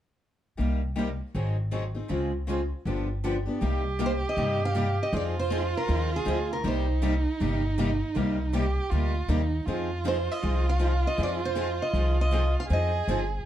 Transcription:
0.57 upright bass C2, steel-string acoustic guitar C3 G3 A#3 D#4 G4
0.96 steel-string acoustic guitar C3 G3 A#3 D#4 G4
1.34 upright bass G#1, steel-string acoustic guitar D#3 F#3 C4 D#4 G#4
1.71 steel-string acoustic guitar D#3 F#3 C4 D#4 G#4
1.94 steel-string acoustic guitar C4 D#4 G#4
2.09 upright bass C#2, steel-string acoustic guitar C#3 G#3 C4 F4 G#4
2.47 steel-string acoustic guitar C#3 G#3 C4 F4 G#4
2.85 upright bass G1, steel-string acoustic guitar D3 F3 B3 D4 G4
3.24 steel-string acoustic guitar D3 F3 B3 D4 G4
3.46 steel-string acoustic guitar B3 D4 G4
3.61 upright bass C2, steel-string acoustic guitar C3 G3 A#3 D#4 G4, violin G4
3.99 steel-string acoustic guitar C3 G3 A#3 D#4 G4
4.06 steel-string acoustic guitar C5
4.29 steel-string acoustic guitar D#5
4.37 upright bass G2, steel-string acoustic guitar C3 G3 A#3 D#4 G4
4.65 steel-string acoustic guitar F5
4.75 steel-string acoustic guitar C3 G3 A#3 D#4 G4
5.03 steel-string acoustic guitar D#5
5.12 upright bass F2, steel-string acoustic guitar F3 C4 D#4 G#4, violin F4
5.17 steel-string acoustic guitar D5
5.39 steel-string acoustic guitar C5
5.50 steel-string acoustic guitar F3 C4 D#4 G#4
5.77 steel-string acoustic guitar A#4
5.88 upright bass D#2, steel-string acoustic guitar F3 C4 D#4 G#4
6.16 steel-string acoustic guitar G#4
6.25 upright bass D2, steel-string acoustic guitar F3 C4 D#4 G#4
6.53 steel-string acoustic guitar A#4
6.64 upright bass C2, steel-string acoustic guitar C3 G3 A#3 D#4 G4 C5, violin D#4
7.02 steel-string acoustic guitar C3 G3 A#3 D#4 G4
7.41 upright bass G1, steel-string acoustic guitar C3 G3 A#3 D#4 G4
7.78 steel-string acoustic guitar C3 G3 A#3 D#4 G4
8.16 upright bass C2, steel-string acoustic guitar C3 G3 A#3 D#4 G4
8.53 steel-string acoustic guitar C3 G3 A#3 D#4 G4, violin G4
8.91 upright bass D2, steel-string acoustic guitar C3 G3 A#3 D#4 G4, violin F4
9.28 upright bass D#2, steel-string acoustic guitar C3 G3 A#3 D#4 G4, violin D#4
9.66 upright bass F2, steel-string acoustic guitar F3 C4 D#4 G#4, violin F4
10.04 steel-string acoustic guitar F3 C4 D#4 G#4 C5
10.32 steel-string acoustic guitar D#5
10.42 upright bass C2, steel-string acoustic guitar F3 C4 D#4 G#4
10.69 steel-string acoustic guitar F5
10.79 steel-string acoustic guitar F3 C4 D#4 G#4
11.07 steel-string acoustic guitar D#5
11.17 upright bass F2, steel-string acoustic guitar F3 C4 D#4 G#4
11.23 steel-string acoustic guitar D5
11.45 steel-string acoustic guitar C5
11.55 steel-string acoustic guitar F3 C4 D#4 G#4
11.82 steel-string acoustic guitar D#5
11.94 upright bass C2, steel-string acoustic guitar F3 C4 D#4 G#4
12.21 steel-string acoustic guitar D#5
12.32 steel-string acoustic guitar F3 C4 D#4 G#4
12.60 steel-string acoustic guitar F5
12.68 upright bass F2, steel-string acoustic guitar F3 C4 D#4 G#4, violin G#4
12.73 steel-string acoustic guitar D#5
13.08 upright bass G1, steel-string acoustic guitar F3 C4 D#4 G#4

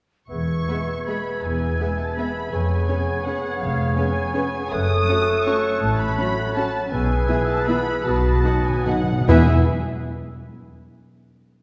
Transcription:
0.30 double bass section E1, cello section E2, bassoon B3, clarinet G#4, oboe E5, violin section C#6, flute section G#6
0.68 french horn section G#3 B3, viola section B3 G#4, violin section B4 E5
1.06 french horn section G#3 B3, viola section B3 G#4, violin section B4 E5 B5
1.43 double bass section E1, cello section E2, violin section G#5
1.80 french horn section G#3 B3, viola section B3 G#4, violin section B4 E5
1.99 violin section A5
2.17 french horn section G#3 B3, viola section B3 G#4, violin section B4 E5 B5
2.52 double bass section F1, cello section F2, bassoon B3, clarinet G#4, oboe C#5, violin section G#5, flute section G#6
2.88 french horn section B3 C#4, viola section C#4 G#4, violin section B4 C#5
3.25 french horn section B3 C#4, viola section C#4 G#4, violin section B4 C#5 F#5
3.60 double bass section F1, cello section F2, violin section F5
3.96 french horn section B3 C#4, viola section C#4 G#4, violin section B4 C#5 G#5
4.33 french horn section B3 C#4, viola section C#4 G#4, violin section B4 C#5
4.71 double bass section F#1, cello section F#2, bassoon A3, clarinet A4, oboe C#5, violin section D#6, flute section F#6
5.08 french horn section A3 C#4, viola section C#4 F#4, violin section A4 C#5
5.46 french horn section A3 C#4, viola section C#4 F#4, violin section A4 C#5 C#6
5.81 double bass section A1, cello section A2, violin section A5
5.98 violin section B5
6.18 french horn section F#3 C#4, viola section C#4 F#4, violin section A4 C#5
6.56 french horn section F#3 C#4, viola section C#4 F#4, violin section A4 C#5 A5
6.91 double bass section B1, timpani B2, cello section B2, bassoon B3, clarinet G#4, oboe B4, violin section G#5, flute section E6
7.28 french horn section E3 E4, viola section B3 E4, violin section G#4 E5
7.47 violin section A5
7.66 french horn section E3 E4, viola section B3 E4, violin section G#4 E5 B5
8.04 double bass section B1, timpani B2, cello section B2, clarinet F#4, violin section A5, flute section D#6
8.13 timpani B2
8.21 timpani B2
8.29 timpani B2
8.36 timpani B2
8.44 french horn section F#3 D#4, viola section B3 D#4, violin section F#4 F#5
8.53 timpani B2
8.60 timpani B2
8.65 violin section G#5
8.70 timpani B2
8.78 timpani B2
8.86 timpani B2, french horn section F#3 D#4, viola section B3 D#4, violin section F#4 F#5
8.95 timpani B2
9.03 timpani B2
9.12 timpani B2
9.21 timpani B2
9.27 double bass section E1, cello section E2, timpani E2, french horn section E3 E4, bassoon B3, viola section B3 E4, clarinet E4, violin section G#4 E5 G#5, oboe B4, flute section E6

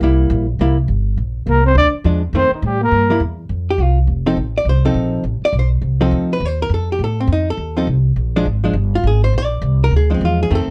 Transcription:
0.01 upright bass C2, hollow-body jazz guitar G3 A#3 E4
0.30 upright bass A#1
0.59 upright bass C2, hollow-body jazz guitar G3 A#3 E4
0.88 upright bass G1
1.17 upright bass A#1
1.47 upright bass C2, trombone A#3, trumpet A#4
1.64 trombone C4, trumpet C5
1.75 upright bass D2, trombone D4, trumpet D5
2.04 upright bass E2, hollow-body jazz guitar F3 G#3 D4
2.33 upright bass F2, hollow-body jazz guitar D#3 A3 C4, trombone C4, trumpet C5
2.51 trombone D#3, trumpet D#4, muted upright bass stroke
2.62 upright bass A2, trombone G3, trumpet G4
2.81 trombone A#3, trumpet A#4
2.91 upright bass G2
3.10 hollow-body jazz guitar G3 A#3 E4
3.20 upright bass E2
3.49 upright bass F2
3.71 hollow-body jazz guitar G4
3.78 upright bass C2
3.82 hollow-body jazz guitar F4
4.07 upright bass F1
4.26 hollow-body jazz guitar F3 C4 D#4 A4
4.37 upright bass A1
4.58 hollow-body jazz guitar D5
4.65 upright bass C2
4.69 hollow-body jazz guitar C5
4.85 hollow-body jazz guitar F3 C4 D#4 A4
4.94 upright bass A#1
5.24 upright bass A1
5.42 hollow-body jazz guitar D5, muted upright bass stroke
5.53 upright bass B1
5.59 hollow-body jazz guitar C5
5.82 upright bass C2
6.01 hollow-body jazz guitar F3 C4 D#4 A4
6.11 upright bass D2
6.33 hollow-body jazz guitar B4
6.40 upright bass D#2
6.45 hollow-body jazz guitar C5
6.62 hollow-body jazz guitar A#4
6.69 upright bass F2
6.74 hollow-body jazz guitar A4
6.92 hollow-body jazz guitar G4
6.99 upright bass A2
7.04 hollow-body jazz guitar A4
7.20 hollow-body jazz guitar C4
7.27 upright bass F2
7.33 hollow-body jazz guitar D#4
7.50 hollow-body jazz guitar A4
7.57 upright bass D#2
7.77 hollow-body jazz guitar F3 C4 D#4 A4
7.87 upright bass C2
8.16 upright bass A#1
8.36 hollow-body jazz guitar F3 G#3 D4
8.45 upright bass G#1
8.64 hollow-body jazz guitar F3 G#3 D4
8.73 upright bass G1
8.95 hollow-body jazz guitar F4
9.03 upright bass G#1, hollow-body jazz guitar G#4
9.24 hollow-body jazz guitar C5
9.33 upright bass A#1
9.38 hollow-body jazz guitar D5
9.62 upright bass C2
9.84 hollow-body jazz guitar A#4
9.91 upright bass D2
9.96 hollow-body jazz guitar G#4
10.10 hollow-body jazz guitar F3 G#3 D4
10.14 hollow-body jazz guitar C4
10.21 upright bass E2
10.25 hollow-body jazz guitar F4
10.43 hollow-body jazz guitar G#4
10.50 upright bass F2, hollow-body jazz guitar D#3 A3 C4
10.55 hollow-body jazz guitar A4
10.67 muted upright bass stroke

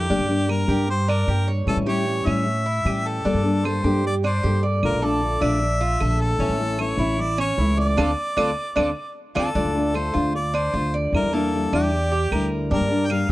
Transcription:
Already playing: harmonica G4
0.09 upright bass G2, nylon-string guitar D3 G3 A#3 D4 G4, cuban tres D4
0.18 upright bass G2
0.29 nylon-string guitar G3 A#3 D4 G4
0.49 nylon-string guitar G3 A#3 D4 G4, cuban tres A#4, harmonica A#4, claves
0.68 upright bass G2, nylon-string guitar G3 A#3 D4 G4, cuban tres G4
0.88 harmonica C5, muted nylon-string guitar stroke
1.08 cuban tres D4, harmonica A#4, claves
1.27 upright bass G2, nylon-string guitar G3 A#3 D4 G4, cuban tres G4
1.48 cuban tres C#5
1.67 upright bass A2, nylon-string guitar E3 G3 C#4 E4, harmonica A4, claves
1.77 upright bass A2
1.86 nylon-string guitar G3 C#4 E4, cuban tres G4, harmonica C#5
2.06 nylon-string guitar E3 G3 C#4 E4
2.25 upright bass A2, nylon-string guitar G3 C#4 E4, cuban tres C#4, harmonica E5, claves
2.45 muted nylon-string guitar stroke
2.66 cuban tres E4
2.84 upright bass A2, nylon-string guitar E3 G3 C#4 E4, cuban tres G4, claves
3.08 harmonica A4
3.24 upright bass G2, nylon-string guitar D3 G3 A#3 D4 A4, cuban tres D4
3.34 upright bass G2
3.44 nylon-string guitar G3 A#3 D4 A4
3.65 nylon-string guitar G3 A#3 D4 A4, cuban tres A4, harmonica C5, claves
3.84 upright bass G2, nylon-string guitar G3 A#3 D4 A4, cuban tres G4
4.07 harmonica D5
4.24 cuban tres D4, harmonica C5, claves
4.43 upright bass G2, nylon-string guitar G3 A#3 D4 A4, cuban tres G4
4.63 cuban tres D5
4.83 upright bass A#1, nylon-string guitar D3 A3 D4 F4, harmonica A#4, claves
4.92 upright bass A#1
5.02 nylon-string guitar A3 D4 F4, cuban tres A4, harmonica D5
5.22 nylon-string guitar D3 A3 D4 F4
5.41 upright bass A#1, nylon-string guitar A3 D4 F4, cuban tres D4, harmonica E5, claves
5.62 muted nylon-string guitar stroke
5.81 cuban tres F4
6.00 upright bass A#1, nylon-string guitar D3 A3 D4 F4, cuban tres A4, claves
6.21 harmonica A4
6.39 upright bass A1, nylon-string guitar E3 A3 C#4 E4, cuban tres C#4
6.49 upright bass A1
6.59 nylon-string guitar A3 C#4 E4
6.78 nylon-string guitar E3 A3 C#4 E4, cuban tres A4, harmonica C#5, claves
6.97 upright bass A1, nylon-string guitar C#4 E4, cuban tres E4
7.02 nylon-string guitar A3
7.19 harmonica D5, muted nylon-string guitar stroke
7.38 cuban tres C#4, harmonica C#5, claves
7.58 upright bass C#2, nylon-string guitar E3 A3 C#4 E4, cuban tres E4
7.77 cuban tres D5, harmonica D5
7.97 upright bass D2, nylon-string guitar A3 C4 D4, cuban tres D4 F4 A4, claves
8.37 upright bass D2, nylon-string guitar A3 C4 D4, cuban tres D4 F4 A4, claves
8.76 upright bass D2, nylon-string guitar A3 C4 D4, cuban tres D4 F4 A4, claves
9.35 upright bass D2, nylon-string guitar A3 C4 D4, cuban tres D4 F4 A4, harmonica A4, claves
9.55 upright bass D2, nylon-string guitar D3 A3 D4 F4, cuban tres D4
9.65 upright bass D2
9.75 nylon-string guitar A3 D4 F4
9.94 nylon-string guitar D3 A3 D4 F4, cuban tres A4, harmonica C5, claves
10.14 upright bass D2, nylon-string guitar A3 D4 F4, cuban tres F4
10.34 harmonica D5, muted nylon-string guitar stroke
10.54 cuban tres D4, harmonica C5, claves
10.74 upright bass D2, nylon-string guitar D3 A3 D4 F4, cuban tres F4
10.94 cuban tres D5
11.12 upright bass E2, nylon-string guitar D3 G3 D4 E4, harmonica A#4, claves
11.23 upright bass E2
11.33 nylon-string guitar G3 D4 E4, cuban tres A#3, harmonica A4
11.54 nylon-string guitar D3 G3 D4 E4
11.73 upright bass E2, nylon-string guitar G3 D4 E4, cuban tres D4, harmonica G4, claves
11.93 muted nylon-string guitar stroke
12.12 cuban tres G4
12.31 upright bass D2, nylon-string guitar D3 G3 D4 E4, cuban tres A#4, claves
12.70 upright bass G2, nylon-string guitar D3 G3 A#3 D4 G4, cuban tres D4, harmonica A#4
12.80 upright bass G2
12.90 nylon-string guitar G3 A#3 D4 G4
13.06 nylon-string guitar G3, cuban tres A#4, harmonica G5, claves
13.11 nylon-string guitar A#3 D4 G4, harmonica F5
13.29 upright bass G2

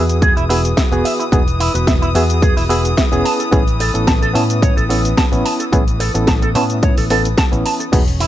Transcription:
Already playing: fingered electric bass E2, string section E3 D#6, reed electric piano B3 F#4 G#4
0.09 closed hi-hat, cabasa
0.22 clean electric guitar G#4, kick, closed hi-hat, cabasa
0.37 fingered electric bass E1, clean electric guitar E4, closed hi-hat, cabasa
0.49 reed electric piano B3 F#4 G#4, clean electric guitar E4, open hi-hat
0.65 closed hi-hat, cabasa
0.77 clean electric guitar E5, kick, snare, closed hi-hat, cabasa
0.92 fingered electric bass E1, reed electric piano B3 F#4 G#4, closed hi-hat, cabasa
1.05 clean electric guitar E5, open hi-hat
1.20 clean electric guitar E4, closed hi-hat, cabasa
1.32 fingered electric bass E1, reed electric piano B3 D#4 F#4 G#4, kick, closed hi-hat, cabasa
1.48 closed hi-hat, cabasa
1.60 clean electric guitar E4, open hi-hat
1.74 fingered electric bass E1, reed electric piano B3 F#4 B4, closed hi-hat, cabasa
1.87 clean electric guitar E5, kick, snare, closed hi-hat, cabasa
2.02 clean electric guitar E4, closed hi-hat, cabasa
2.15 fingered electric bass E2, reed electric piano B3 F#4 G#4, clean electric guitar E5, open hi-hat
2.30 closed hi-hat, cabasa
2.42 clean electric guitar G#4, kick, closed hi-hat, cabasa
2.57 fingered electric bass E1, clean electric guitar E4, open hi-hat, cabasa
2.69 reed electric piano B3 F#4 G#4, clean electric guitar E4, open hi-hat
2.85 closed hi-hat, cabasa
2.97 clean electric guitar E5, kick, snare, closed hi-hat, cabasa
3.12 fingered electric bass E1, reed electric piano B3 C#4 E4 G#4, closed hi-hat, cabasa
3.25 clean electric guitar A5, open hi-hat
3.39 clean electric guitar A4, closed hi-hat, cabasa
3.52 fingered electric bass A1, reed electric piano B3 C#4 E4 G#4, kick, closed hi-hat, cabasa
3.68 closed hi-hat, cabasa
3.80 clean electric guitar A4, open hi-hat
3.94 fingered electric bass A1, reed electric piano B3 C#4 E4 A4, closed hi-hat, cabasa
4.07 clean electric guitar A5, kick, snare, closed hi-hat, cabasa
4.22 clean electric guitar A4, closed hi-hat, cabasa
4.34 fingered electric bass A2, reed electric piano B3 C#4 E4, clean electric guitar A5, open hi-hat
4.50 closed hi-hat, cabasa
4.62 clean electric guitar C#5, kick, closed hi-hat, cabasa
4.77 fingered electric bass A1, clean electric guitar A4, closed hi-hat, cabasa
4.90 reed electric piano B3 C#4 E4, clean electric guitar A4, open hi-hat
5.05 closed hi-hat, cabasa
5.17 clean electric guitar A5, kick, snare, closed hi-hat, cabasa
5.32 fingered electric bass A1, reed electric piano B3 C#4 E4, closed hi-hat, cabasa
5.45 clean electric guitar A5, open hi-hat
5.60 clean electric guitar A4, closed hi-hat, cabasa
5.72 fingered electric bass A1, reed electric piano B3 C#4 E4 G#4, kick, closed hi-hat, cabasa
5.88 closed hi-hat, cabasa
6.00 clean electric guitar A4, open hi-hat
6.15 fingered electric bass A1, reed electric piano B3 C#4 E4 A4, closed hi-hat, cabasa
6.27 clean electric guitar A5, kick, snare, closed hi-hat, cabasa
6.42 clean electric guitar A4, closed hi-hat, cabasa
6.55 fingered electric bass A2, reed electric piano B3 C#4 E4, clean electric guitar A5, open hi-hat
6.70 closed hi-hat, cabasa
6.83 clean electric guitar C#5, kick, closed hi-hat, cabasa
6.98 fingered electric bass A1, clean electric guitar A4, open hi-hat, cabasa
7.10 reed electric piano B3 C#4 E4 A4, clean electric guitar A4, open hi-hat
7.25 closed hi-hat, cabasa
7.38 clean electric guitar A5, kick, snare, closed hi-hat, cabasa
7.52 fingered electric bass A1, reed electric piano B3 C#4 E4, closed hi-hat, cabasa
7.65 clean electric guitar A5, open hi-hat
7.80 clean electric guitar A4, closed hi-hat, cabasa
7.92 fingered electric bass E1, reed electric piano B3 D#4 F#4 G#4, string section C#4 C#5, kick, closed hi-hat, crash, ride, cabasa
8.08 closed hi-hat, cabasa
8.20 clean electric guitar E4, open hi-hat

